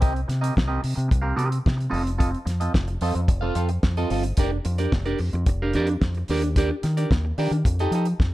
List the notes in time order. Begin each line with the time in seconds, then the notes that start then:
0.01 C2 C4 G4 A#4 D#5, kick, closed hi-hat
0.14 muted clean electric guitar stroke, closed hi-hat
0.28 C3, muted clean electric guitar stroke, snare, closed hi-hat
0.41 C4 G4 A#4 D#5, closed hi-hat
0.55 C2, muted clean electric guitar stroke, kick, snare
0.68 C4 G4 A#4 D#5
0.82 C3, muted clean electric guitar stroke, open hi-hat
0.95 C3, muted clean electric guitar stroke, closed hi-hat
1.08 C2, muted clean electric guitar stroke, kick
1.12 closed hi-hat
1.22 C4 G4 A#4 F5
1.36 C3 C4 G4 A#4 D#5, closed hi-hat
1.49 muted clean electric guitar stroke, closed hi-hat
1.66 C3, kick, snare
1.77 muted clean electric guitar stroke, closed hi-hat
1.90 F1 C4 F4 A4 D#5
1.94 open hi-hat
2.04 muted clean electric guitar stroke, closed hi-hat
2.18 C4 F4 A4 D#5, kick, closed hi-hat
2.31 muted clean electric guitar stroke, closed hi-hat
2.45 F2, muted clean electric guitar stroke, snare, closed hi-hat
2.60 C4 F4 A4 D#5, closed hi-hat
2.74 F1, muted clean electric guitar stroke, kick, snare
2.88 muted clean electric guitar stroke, closed hi-hat
3.01 F2 C4 F4 A4 D#5, open hi-hat
3.15 F2, muted clean electric guitar stroke, closed hi-hat
3.28 F1, muted clean electric guitar stroke, kick, closed hi-hat
3.41 C4 F4 A4 F5
3.55 F2 C4 F4 A4 F5, closed hi-hat
3.69 muted clean electric guitar stroke, closed hi-hat
3.83 F2, muted clean electric guitar stroke, kick, snare
3.97 C4 F4 A4 D#5, closed hi-hat
4.10 G1 C4 F4 A4 D#5, open hi-hat
4.23 muted clean electric guitar stroke, closed hi-hat
4.37 F1 D4 G4 A#4 D5, kick, closed hi-hat
4.52 muted clean electric guitar stroke
4.65 F2, muted clean electric guitar stroke, closed hi-hat
4.78 D4 G4 A#4 D5, closed hi-hat
4.92 F1, kick, snare
5.05 D4 G4 A#4 D5, closed hi-hat
5.18 F2, muted clean electric guitar stroke, open hi-hat
5.33 F2, muted clean electric guitar stroke, closed hi-hat
5.46 F1, muted clean electric guitar stroke, kick, closed hi-hat
5.62 D4 G4 A#4 F5
5.73 F2 D4 G4 A#4 D5, closed hi-hat
5.87 muted clean electric guitar stroke, closed hi-hat
6.01 F2, kick, snare
6.15 muted clean electric guitar stroke, closed hi-hat
6.28 D#2 D4 G4 A#4 D5, open hi-hat
6.42 muted clean electric guitar stroke, closed hi-hat
6.56 D4 G4 A#4 D5, kick, closed hi-hat
6.71 muted clean electric guitar stroke
6.83 D#3, muted clean electric guitar stroke, snare, closed hi-hat
6.97 D4 G4 A#4 D5, closed hi-hat
7.11 D#2, kick, snare
7.25 muted clean electric guitar stroke
7.38 D#3 D4 G4 A#4 D5, open hi-hat
7.51 D#3, muted clean electric guitar stroke, closed hi-hat
7.65 F2, muted clean electric guitar stroke, kick, closed hi-hat
7.79 D#4 G4 A4 D#5, closed hi-hat
7.91 F3 D#4 G4 A4 D#5, closed hi-hat
8.05 muted clean electric guitar stroke, closed hi-hat
8.20 F2, muted clean electric guitar stroke, kick, snare